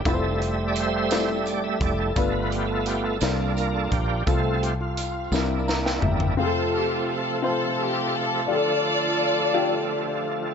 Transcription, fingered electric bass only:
X:1
M:6/8
L:1/8
Q:3/8=57
K:F
V:1 name="Fingered electric bass" clef=bass
F,,,4- F,,, F,,, | G,,,3 C,,2 B,,, | C,,3 C,,2 G,,, | z6 |
z6 |]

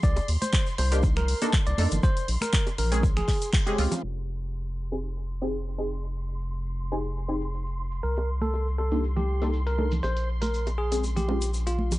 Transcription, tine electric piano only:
X:1
M:4/4
L:1/16
Q:"Swing 16ths" 1/4=120
K:Fm
V:1 name="Tine electric piano"
=d2 z c2 z c2 z B3 z d2 z | c2 z B2 z B2 z A3 z G2 z | z16 | z16 |
B2 z =A2 z A2 z G3 z B2 z | c2 z B2 z A2 z G3 z F2 z |]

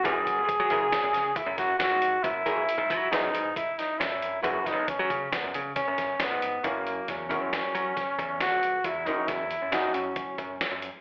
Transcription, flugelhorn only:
X:1
M:5/4
L:1/8
Q:1/4=136
K:F#mix
V:1 name="Flugelhorn"
G6 E F F2 | E4 D2 E D E2 | F D C2 B, z C2 B,2 | A,2 C6 F2 |
E D E2 D C4 z |]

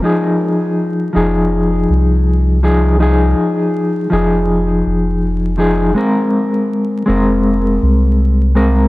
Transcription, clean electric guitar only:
X:1
M:4/4
L:1/8
Q:"Swing 16ths" 1/4=81
K:Fm
V:1 name="Clean electric guitar"
[F,EA]3 [F,EA]4 [F,EA] | [F,EA]3 [F,EA]4 [F,EA] | [A,CB]3 [A,CB]4 [A,CB] |]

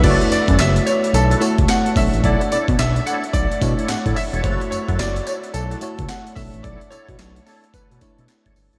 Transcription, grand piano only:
X:1
M:4/4
L:1/8
Q:"Swing 16ths" 1/4=109
K:Bm
V:1 name="Grand piano"
d d e c A2 f e | d d e f d2 f e | c c d c A2 f e | d c2 A B3 z |]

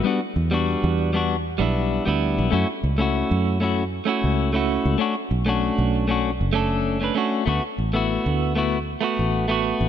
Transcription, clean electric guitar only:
X:1
M:4/4
L:1/16
Q:"Swing 16ths" 1/4=97
K:D
V:1 name="Clean electric guitar"
[G,B,DF] z2 [G,B,DF]4 [G,B,DF] z2 [G,B,DE]3 [G,B,DE]3 | [A,CEF] z2 [A,CEF]4 [A,CEF] z2 [A,CEF]3 [A,CEF]3 | [A,CDF] z2 [A,CDF]4 [A,CDF] z2 [A,CDA]3 [A,CDB] [A,CDF]2 | [A,B,EF] z2 [A,B,EF]4 [A,B,EF] z2 [A,B,EF]3 [A,B,EF]3 |]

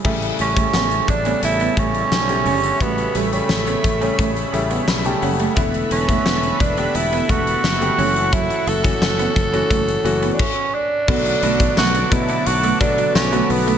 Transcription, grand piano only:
X:1
M:4/4
L:1/16
Q:1/4=87
K:Amix
V:1 name="Grand piano"
z16 | z12 b a f2 | z16 | z16 |
z16 |]
V:2 name="Grand piano"
[C,G,A,E]3 [C,G,A,E]3 z [C,G,A,B,]3 [C,G,A,E]3 [C,G,A,G]3 | [C,G,A,F]3 [C,G,A,C]3 z [C,G,A,C]3 [C,G,A,E]3 [C,G,A,G]3 | [D,A,B,E]3 [D,A,B,E]3 z [D,A,B,G]3 [D,A,B,E]3 [D,A,B,G] [E,A,CF]2- | [E,A,CF]2 z [E,A,CF]3 z [E,A,CF]3 [E,A,CF]2 z4 |
[D,F,A,B,F]2 [D,F,A,B,F]3 z [D,F,A,B,E]3 z [D,F,A,B,F]3 [D,F,A,B,F]3 |]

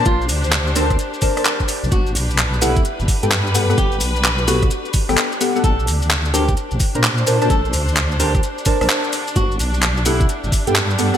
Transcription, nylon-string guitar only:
X:1
M:4/4
L:1/8
Q:"Swing 16ths" 1/4=129
K:G
V:1 name="Nylon-string guitar"
=F z2 C z4 | F z2 E z4 | G z2 F z4 | A z2 G z4 |
A z2 G z4 | F z2 E z4 |]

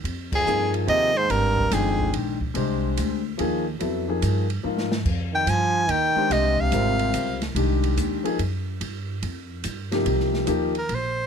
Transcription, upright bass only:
X:1
M:3/4
L:1/8
Q:"Swing" 1/4=144
K:Fdor
V:1 name="Upright bass" clef=bass
F,,2 G,,2 E,,2 | A,,,2 G,,,2 B,,,2 | C,,2 D,,2 E,,2 | F,,2 G,,2 A,,2 |
F,,2 G,,2 E,, z | C,,2 A,,,2 _D,,2 | C,,2 E,, z _G,,2 | G,,2 F,,2 G,,2 |
[K:Cm] C,,2 E,,2 B,,,2 |]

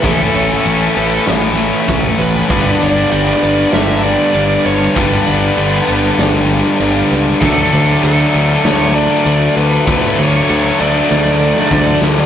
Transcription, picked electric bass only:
X:1
M:4/4
L:1/8
Q:1/4=98
K:Glyd
V:1 name="Picked electric bass" clef=bass
A,,, A,,, A,,, A,,, A,,,2 A,,, A,,, | G,,, G,,, G,,, G,,, G,,,2 G,,, G,,, | G,,, G,,, G,,, G,,, G,,,2 G,,, C,, | D,, D,, D,, D,, D,,2 D,, D,, |
D,, D,, D,, D,, D,,2 D,, D,, |]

